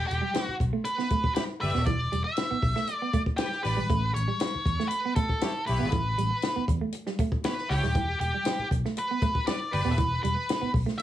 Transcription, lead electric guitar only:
0.07 0.43 G4 medium
0.43 0.55 F#4 medium
0.85 1.33 B4 loud
1.35 1.42 B4 medium
1.61 1.85 E5 loud
1.86 2.24 D5 loud
2.24 2.92 E5 loud
2.92 3.22 D5 loud
3.37 3.61 G4 medium
3.63 4.11 B4 loud
4.14 4.87 C#5 medium
4.88 5.15 B4 loud
5.16 5.66 A4 loud
5.66 6.64 B4 medium
7.45 7.71 B4 medium
7.69 8.19 G4 medium
8.20 8.67 G4 medium
8.99 9.45 B4 medium
9.47 9.73 D5 loud
9.73 10.22 B4 loud
10.23 10.70 B4 medium
10.98 11.02 E5 loud

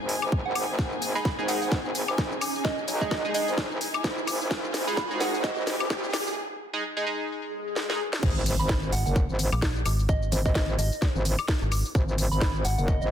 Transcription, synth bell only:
0.45 0.92 F#5 medium
1.15 1.22 B5 medium
1.25 1.34 B5 medium
1.48 1.57 F#5 medium
1.62 1.68 F#5 medium
2.65 2.99 D#5 loud
3.01 3.08 D#5 medium
3.11 3.20 D#5 medium
3.34 3.71 D#5 medium
4.87 4.94 B5 medium
4.97 5.06 B5 medium
5.20 5.29 F#5 medium
5.34 5.40 F#5 medium
5.44 5.52 D#5 medium
5.57 5.63 D#5 medium
8.59 8.66 B5 medium
8.69 8.78 B5 medium
8.92 9.01 F#5 medium
9.06 9.12 F#5 medium
10.09 10.43 D#5 loud
10.45 10.52 D#5 medium
10.55 10.64 D#5 medium
10.79 11.15 D#5 medium
12.31 12.38 B5 medium
12.41 12.50 B5 medium
12.65 12.73 F#5 medium
12.78 12.84 F#5 medium
12.88 12.97 D#5 medium
13.01 13.08 D#5 medium

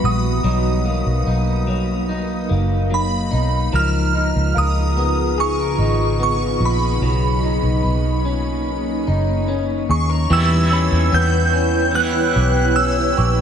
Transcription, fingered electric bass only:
0.03 0.43 A#1 loud
0.44 1.03 B1 medium
1.06 1.26 B1 medium
1.26 2.46 B1 medium
2.50 3.28 F#1 medium
3.33 3.71 B1 medium
3.73 4.32 C#2 medium
4.36 4.55 C#2 medium
4.56 5.75 C#2 loud
5.78 6.57 G#1 medium
6.60 7.00 A#1 medium
7.01 7.60 B1 loud
7.63 7.83 B1 medium
7.84 9.03 B1 medium
9.08 9.86 F#1 medium
9.89 10.28 D#2 loud
10.30 10.89 E2 loud
10.92 11.12 E2 medium
11.13 12.32 E2 loud
12.36 13.14 B1 medium
13.18 13.41 A#1 medium

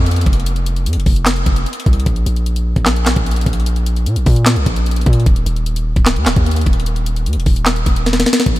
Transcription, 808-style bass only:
0.00 0.25 F2 loud
0.26 0.88 F1 loud
0.86 0.98 F2 loud
0.96 1.06 F1 loud
1.06 1.45 F1 loud
1.46 1.66 F1 loud
1.86 2.06 C2 loud
2.06 2.26 A#1 loud
2.26 2.74 A#1 loud
2.76 3.15 A#1 loud
3.16 3.45 A#1 loud
3.46 4.08 A#1 loud
4.06 4.18 A#2 loud
4.16 4.26 A#1 loud
4.26 4.58 A#2 loud
4.56 4.66 C2 loud
4.66 5.05 A#1 loud
5.06 5.26 A#2 loud
5.26 5.46 D#1 loud
5.46 5.94 D#1 loud
5.96 6.18 C#1 loud
6.16 6.28 D#2 loud
6.26 6.36 C#1 loud
6.36 6.65 D#2 loud
6.66 7.28 D#1 loud
7.26 7.38 D#2 loud
7.36 7.46 D#1 loud
7.46 7.85 D#1 loud
7.86 8.25 D#1 loud
8.46 8.60 A#1 loud

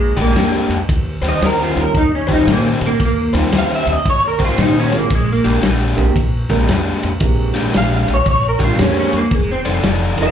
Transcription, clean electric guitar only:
0.00 0.20 G#3 medium
0.21 0.48 A#3 medium
1.29 1.43 D#5 medium
1.46 1.61 A#4 medium
1.63 1.78 F4 medium
1.81 1.96 A#4 medium
1.97 2.13 D#4 medium
2.15 2.31 C#4 medium
2.33 2.48 D#4 medium
2.51 2.66 A#3 medium
2.86 3.01 A#3 loud
3.05 3.36 A#3 loud
3.58 3.73 F5 loud
3.75 3.92 E5 medium
3.92 4.07 D#5 medium
4.10 4.25 C#5 medium
4.27 4.42 A#4 medium
4.45 4.60 F4 medium
4.62 4.77 D#4 medium
4.80 4.95 C#4 medium
4.97 5.12 A#3 medium
5.15 5.30 G#3 loud
5.32 5.58 A#3 medium
7.77 7.93 F5 loud
7.96 8.11 F5 medium
8.14 8.28 C#5 medium
8.31 8.46 C#5 medium
8.48 8.63 A#4 medium
8.64 8.80 F4 medium
8.82 8.97 C#4 medium
8.99 9.15 C#4 medium
9.16 9.34 A#3 medium
9.34 9.50 G#3 medium
9.51 9.78 C4 medium
10.22 10.31 C5 medium
10.22 10.31 F5 medium

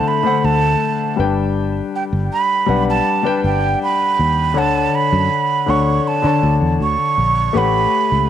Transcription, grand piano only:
0.00 0.23 D3 medium
0.00 0.24 A3 medium
0.00 0.25 C5 medium
0.00 0.27 F#5 medium
0.23 1.18 D3 medium
0.23 1.18 A3 medium
0.23 1.19 C5 medium
0.23 1.19 F#5 medium
1.16 2.56 G3 medium
1.16 2.56 D4 medium
1.16 2.57 B4 medium
1.16 2.57 G5 medium
2.66 3.19 G3 medium
2.66 3.20 D4 medium
2.66 3.20 B4 medium
2.66 3.21 F#5 medium
3.23 4.44 G3 medium
3.23 4.45 D4 medium
3.23 4.46 B4 medium
3.23 4.46 G5 medium
4.54 5.58 D3 medium
4.54 5.59 D4 medium
4.54 5.59 C#5 medium
4.54 5.60 F#5 medium
5.66 6.19 D3 medium
5.66 6.19 D4 medium
5.66 6.20 C#5 medium
5.66 6.20 F#5 medium
6.22 7.44 D3 medium
6.22 7.44 D4 medium
6.22 7.45 C#5 medium
6.22 7.45 A5 medium
7.53 8.29 A3 medium
7.53 8.29 G4 medium
7.53 8.29 B4 medium
7.53 8.29 C#5 medium
7.53 8.29 F#5 medium

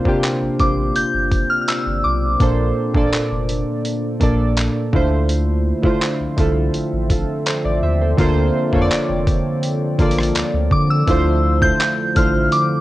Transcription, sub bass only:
0.42 0.49 A1 soft
0.60 0.92 A1 medium
0.96 1.03 G1 soft
1.14 1.46 G1 medium
1.86 2.02 G1 medium
2.05 2.36 B1 medium
2.41 2.72 A#1 loud
2.95 3.11 A1 medium
3.13 3.20 F1 soft
3.31 3.63 F1 medium
4.21 4.69 A#1 medium
4.93 5.73 D2 loud
6.20 6.27 C2 soft
6.38 6.70 C2 medium
6.75 6.82 A1 soft
6.93 7.24 A1 medium
7.65 7.81 A1 medium
7.83 8.14 D#2 medium
8.19 8.50 D2 loud
8.73 8.89 F2 medium
8.91 8.98 F1 soft
9.09 9.41 F1 medium
9.99 10.31 A1 medium
10.36 10.43 D2 medium
10.54 10.69 D2 medium
10.71 11.03 D3 loud
11.08 11.71 D2 loud
12.16 12.48 A1 medium

